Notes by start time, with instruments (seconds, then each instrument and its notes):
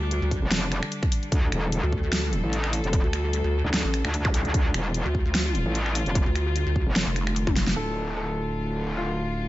Already playing: wobble bass D2, string section D3 G3 D4
0.11 closed hi-hat
0.22 wobble bass D2
0.31 kick, open hi-hat
0.42 wobble bass F1
0.51 snare, closed hi-hat
0.72 finger snap, closed hi-hat
0.83 finger snap
0.92 closed hi-hat
1.03 finger snap, kick
1.12 open hi-hat
1.23 closed hi-hat
1.32 wobble bass D2, string section A4, kick, closed hi-hat
1.52 wobble bass E1, finger snap, closed hi-hat
1.72 closed hi-hat
1.83 wobble bass D2
1.92 kick
2.03 wobble bass D2
2.13 snare, closed hi-hat
2.33 closed hi-hat
2.44 wobble bass A1
2.53 closed hi-hat
2.64 finger snap
2.73 open hi-hat
2.84 wobble bass F1, closed hi-hat
2.93 kick, closed hi-hat
3.04 wobble bass D2
3.13 finger snap, closed hi-hat
3.33 closed hi-hat
3.44 wobble bass D2
3.65 wobble bass D2
3.74 snare, closed hi-hat
3.85 wobble bass A1
3.94 finger snap, closed hi-hat
4.05 wobble bass D2, finger snap
4.14 closed hi-hat
4.25 finger snap, kick, zap
4.34 open hi-hat
4.45 wobble bass D2, closed hi-hat
4.54 wobble bass D2, string section F4, kick, closed hi-hat
4.74 wobble bass E1, finger snap, closed hi-hat
4.94 closed hi-hat
5.05 wobble bass D2
5.15 kick
5.26 wobble bass D2
5.35 snare, closed hi-hat
5.55 closed hi-hat
5.66 wobble bass A1
5.75 closed hi-hat
5.86 finger snap
5.95 open hi-hat
6.06 wobble bass F1, closed hi-hat
6.15 kick, closed hi-hat
6.26 wobble bass D2
6.36 finger snap, closed hi-hat
6.56 closed hi-hat
6.67 wobble bass D2
6.76 kick
6.87 wobble bass F1
6.96 snare, closed hi-hat
7.07 wobble bass F1
7.16 finger snap, closed hi-hat
7.27 finger snap
7.36 closed hi-hat
7.47 finger snap, kick, high tom
7.56 snare, open hi-hat
7.67 snare, closed hi-hat
7.76 wobble bass D1, string section D3 A3 F4, grand piano A4
8.17 grand piano A4
8.97 grand piano F4